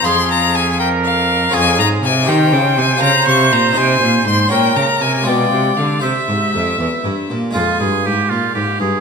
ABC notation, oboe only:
X:1
M:6/8
L:1/16
Q:3/8=80
K:Fm
V:1 name="Oboe"
A6 B6 | A4 z2 c6- | c12 | B6 =d6 |
=e8- e z3 | F2 A2 G2 F2 G2 A2 |]